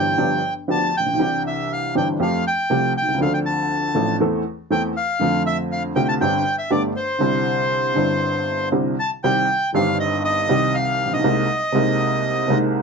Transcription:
Already playing: upright piano G1 G2 E3 G3 C4 G4, bandoneon G5
0.18 upright piano G1 G2 F3 B3 D4 G4
0.68 upright piano D2 D3 F3 B3 D4 G4, bandoneon A5
0.97 upright piano A1, bandoneon G5
1.06 upright piano A#1
1.13 upright piano B1
1.17 upright piano C2 C3 E3 C4 D4 G4
1.47 bandoneon E5
1.73 bandoneon F5
1.95 upright piano G1 G2 E3 C4 D4 G4, bandoneon G5
2.20 upright piano F2 F3 A3 C4 G4, bandoneon F5
2.47 bandoneon G5
2.70 upright piano C2 C3 F3 A3 C4 G4
2.97 bandoneon G5
3.02 upright piano B1
3.08 upright piano C2
3.14 upright piano C#2
3.18 upright piano D2 D3 F3 C4 D4 A4, bandoneon F5
3.34 bandoneon G5
3.46 bandoneon A5
3.95 upright piano A1 A2 F3 C4 D4 A4
4.20 upright piano E2 E3 A3 C4 A4
4.71 upright piano E2 E3 A3 C4 A4, bandoneon G5
4.97 bandoneon F5
5.19 upright piano F2 D3 F3 A3 C4 F4
5.46 bandoneon E5
5.72 bandoneon F5
5.95 upright piano C2 C3 D3 A3 C4 F4, bandoneon G5
6.09 bandoneon A5
6.21 upright piano G1 G2 D3 G3 C4 G4, bandoneon G5
6.58 bandoneon E5
6.70 upright piano G1 G2 D3 A3 B3 G4, bandoneon D5
6.96 bandoneon C5
7.19 upright piano C2 C3 D3 G3 C4
7.23 upright piano E4
7.94 upright piano G1 G2 D3 G3 C4
7.98 upright piano E4
8.72 upright piano C2 C3 D3 G3 C4 E4
8.99 bandoneon A5
9.24 upright piano C2 C3 D#3 G3 C4 G4, bandoneon G5
9.73 upright piano G1 G2 D#3 G3 C4, bandoneon F5
9.77 upright piano G4
10.00 bandoneon D#5
10.25 bandoneon D#5
10.47 upright piano C2 C3 D#3 G3 C4 G4
10.75 bandoneon F5
11.05 upright piano A1
11.12 upright piano A#1, bandoneon D#5
11.19 upright piano B1
11.24 upright piano C2 C3 G#3 A#3 D#4
11.72 upright piano C2 C3 G#3 A#3
11.76 upright piano D#4
12.48 upright piano C2 C3 G#3 A#3 D#4

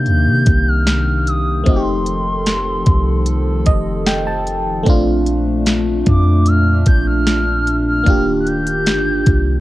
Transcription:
Already playing: analog synth pad C3 D#3 A#3, fm electric piano A#3 D4 D#4 G4, soft synth lead G6
0.06 808-style bass D#2, closed hi-hat
0.27 808-style bass C3
0.46 808-style bass C2, kick, closed hi-hat
0.68 soft synth lead F6
0.87 snare, closed hi-hat
1.27 soft synth lead D#6, closed hi-hat
1.64 808-style bass F1, analog synth pad F3 A4, fm electric piano A3 C4, kick, closed hi-hat
1.68 fm electric piano D#4 F#4, soft synth lead C6
1.76 fm electric piano G4
2.06 closed hi-hat
2.46 snare, closed hi-hat
2.86 808-style bass C2, kick, closed hi-hat
3.26 closed hi-hat
3.66 808-style bass F1, fm electric piano D#5, kick, closed hi-hat
4.06 fm electric piano G5, snare, closed hi-hat
4.27 fm electric piano A5
4.47 closed hi-hat
4.83 808-style bass A#1, analog synth pad A#2 A3 D4, fm electric piano A3 C4, kick, closed hi-hat
4.88 fm electric piano D4 F4
5.26 closed hi-hat
5.66 snare, closed hi-hat
6.06 808-style bass F2, soft synth lead D6, kick, closed hi-hat
6.46 soft synth lead F6, closed hi-hat
6.86 808-style bass A#1, soft synth lead G6, kick, closed hi-hat
7.07 soft synth lead F6
7.27 snare, closed hi-hat
7.67 closed hi-hat
7.87 soft synth lead F6
8.04 808-style bass D#1, analog synth pad D#3 G4, fm electric piano A#3 D4, kick, closed hi-hat
8.08 fm electric piano F4 G4
8.41 soft synth lead F#6
8.47 soft synth lead G6, closed hi-hat
8.67 closed hi-hat
8.86 808-style bass G1, snare, closed hi-hat
9.26 808-style bass C2, kick, closed hi-hat

